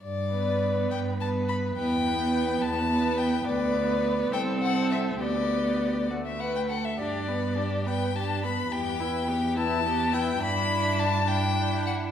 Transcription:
X:1
M:6/8
L:1/16
Q:3/8=69
K:G
V:1 name="Violin"
d6 g2 a2 b2 | g6 a4 g2 | d6 g2 f2 e2 | d6 z e f g f e |
d6 g2 a2 b2 | g6 a4 g2 | [K:Edor] b4 a2 g4 f2 |]
V:2 name="Violin"
z2 B6 B4 | B2 B6 B4 | B6 A6 | G6 F2 B2 A2 |
G2 B2 G2 B2 G2 B2 | G2 B2 G2 B2 G2 B2 | [K:Edor] E6 E6 |]
V:3 name="Viola"
z2 B,6 B,4 | B,2 B,6 B,4 | B,6 C6 | B,6 A,4 z2 |
D2 B,2 D2 B,2 D2 B,2 | B,2 E2 B,2 E2 B,2 E2 | [K:Edor] D6 D6 |]
V:4 name="Cello" clef=bass
G,,6 G,,6 | E,,6 E,,6 | D,,6 C,,6 | D,,8- D,,2 z2 |
G,,12 | E,,12 | [K:Edor] G,,12 |]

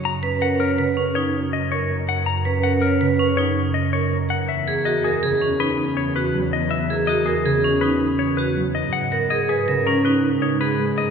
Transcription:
X:1
M:6/4
L:1/8
Q:1/4=162
K:Elyd
V:1 name="Clean electric guitar"
a z f A z2 c z d c z f | a z f A z2 c z d c z f | e z d G z2 B z c B z d | e z d G z2 B z c B z d |
f z d G z A B z c B z d |]
V:2 name="Vibraphone"
z B A c B C D z2 A z2 | z B A c B C D z2 A z2 | z G F A G C D z2 F z2 | z G F A G C D z2 F z2 |
z A G B A C D z D G z2 |]
V:3 name="Harp" clef=bass
F, C3 C,6 A,2- | A, C3 C,6 A,2- | A, A,3 C,6 F,2- | F, A,3 C,6 F,2- |
F, B,3 C,6 G, A, |]
V:4 name="Double bass section" clef=bass
F,,12- | F,,12 | E,,12- | E,,12 |
G,,12 |]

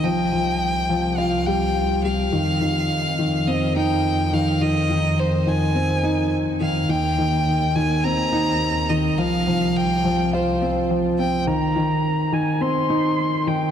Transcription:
X:1
M:4/4
L:1/8
Q:1/4=105
K:Fm
V:1 name="Violin"
g4 f g2 f- | f4 e g2 f | e2 c a3 z f | g3 a b3 e |
f2 g2 c2 z g | b3 a c'3 g |]
V:2 name="Felt piano" clef=bass
F, F, z F, F G, z G, | E, E, z E, C E z E, | E, E, z E, C E z E, | E, E, z E, C E z E, |
F, F, z F, F C F, C | E, E, z E, C E z E, |]
V:3 name="Double bass section" clef=bass
C,,8 | F,,8- | F,,8 | E,,8 |
C,,8 | z8 |]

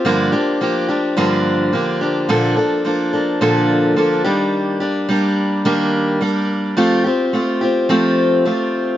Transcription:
X:1
M:4/4
L:1/8
Q:"Swing 16ths" 1/4=107
K:Bb
V:1 name="Steel-string acoustic guitar"
[G,,D,F,B,DG] [F,B,DG] [F,B,DG] [F,B,DG] [G,,D,F,B,DG]2 [F,B,DG] [F,B,DG] | [B,,D,F,B,DA] [F,B,DA] [F,B,DA] [F,B,DA] [B,,D,F,B,DA]2 [F,B,DA] [E,G,B,DG]- | [E,G,B,DG] [B,DG] [G,B,DG]2 [E,G,B,DG]2 [G,B,DG]2 | [F,A,CFG] [CFG] [A,CFG] [CFG] [F,A,CFG]2 [A,CFG]2 |]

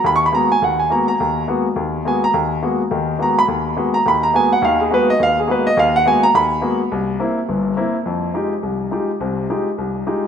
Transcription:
X:1
M:4/4
L:1/8
Q:"Swing" 1/4=210
K:G#dor
V:1 name="Grand piano"
(3b c' b a g f g a a- | a2 z4 g a | z6 a b | z3 a b a g f |
e G B d e G B d | e f g a b3 z | z8 | [K:Fm] z8 |
z8 |]
V:2 name="Grand piano"
D,,2 [G,A,B,F] z D,,2 [G,A,B,F] z | D,,2 [G,A,B,F] z D,,2 [G,A,B,F] z | D,,2 [G,A,B,F] z [D,,D,]2 [G,A,B,F] z | D,,2 [G,A,B,F] z [D,,D,]2 [G,A,B,F] z |
[D,,D,]2 [G,A,B,F] z D,,2 [G,A,B,F] z | D,,2 [G,A,B,F] z D,,2 [G,A,B,F] z | =C,,2 [_B,=C=E] z [=G,,,=G,,]2 [B,CE] z | [K:Fm] F,,2 [A,EFG] z C,,2 [A,EFG] z |
[C,,C,]2 [A,EFG] z C,,2 [A,EFG] z |]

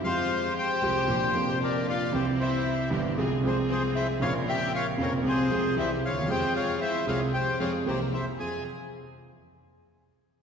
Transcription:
X:1
M:4/4
L:1/16
Q:1/4=115
K:Fm
V:1 name="Bandoneon"
[cf]4 [cg]8 [B=d]2 [df]2 | [Gc]2 [c=e]4 z4 [Ac]2 [Ac]2 [ce]2 | [df]2 [=eg]2 [df]2 [Bd]2 [Ac]4 [ce]2 [df]2 | [cg]2 [df]2 [c=e]2 [df]2 [cg]2 [df]2 [Gc]2 [ce]2 |
a2 z12 z2 |]
V:2 name="String section"
[A,FG]6 [A,FG]2 [B,=DG]2 [B,DG]6 | [C=EG]6 [CEG]2 [CFA]2 [CFA]6 | [CB]6 [CDB]2 [CFA]2 [CFA]2 [C=EG]2 z2 | [CFA]6 [CFA]2 z2 [CFA]2 [C=EB]2 z2 |
[CFA]2 z12 z2 |]
V:3 name="Violin section"
F4 G8 =D2 F2 | C2 =E4 z4 C2 C2 E2 | F2 G2 F2 D2 C4 =E2 F2 | G2 F2 =E2 F2 G2 F2 C2 E2 |
A2 z12 z2 |]
V:4 name="Grand piano" clef=bass
[F,,F,A,CG]6 [C,,C,F,A,CG]2 [B,,,B,,F,B,=DG]2 [F,,,F,,F,B,DG]6 | [C,,C,=E,G,CG]6 [G,,,G,,E,G,CG]2 [C,,C,F,A,CA]2 [C,,C,F,A,CA]6 | [B,,,B,,D,B,CF]6 [F,,,F,,D,B,CF]2 [C,,C,F,A,CA]2 [C,,C,F,A,CA]2 [C,,C,=E,G,CG]2 z/2 =D,,/2 _E,,/2 =E,,/2 | [F,,F,A,CA]6 [C,,C,F,A,CA]2 z2 [F,,F,A,CA]2 [C,,C,=E,B,CG]2 z2 |
[F,,CFA]2 z12 z2 |]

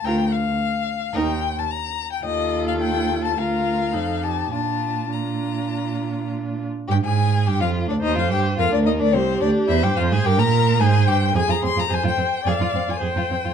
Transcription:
X:1
M:4/4
L:1/16
Q:1/4=108
K:Bb
V:1 name="Violin"
g2 f6 g3 a b3 g | e3 f g3 a f6 a2 | a4 b8 z4 | [K:Eb] g a3 g f2 d e f g2 f d e d |
c2 d2 =e g f a g b3 a2 g2 | a b c' b a g3 f3 a g4 |]
V:2 name="Viola"
F2 z6 E2 z6 | F8 F4 E4 | D4 D8- D2 z2 | [K:Eb] z8 c4 B4 |
G4 c4 B4 c4 | A4 c4 d4 c4 |]
V:3 name="Violin"
B2 z6 B2 z6 | A8 B4 A2 G2 | F4 F8- F2 z2 | [K:Eb] G A3 G F2 D E F G2 F D E D |
C2 D2 =E G F A G B3 A2 G2 | A F C F A F C z A F C F A F C F |]
V:4 name="Cello" clef=bass
D,,3 z4 z E,,3 z4 z | E,,8 D,,4 F,,4 | B,,12- B,,3 z | [K:Eb] G,, A,,3 G,, F,,2 D,, E,, F,, G,,2 F,, D,, E,, D,, |
C,,2 D,,2 =E,, G,, F,, A,, G,, B,,3 A,,2 G,,2 | F,, F,, F,, F,, F,, F,, F,, z F,, F,, F,, F,, F,, F,, F,, F,, |]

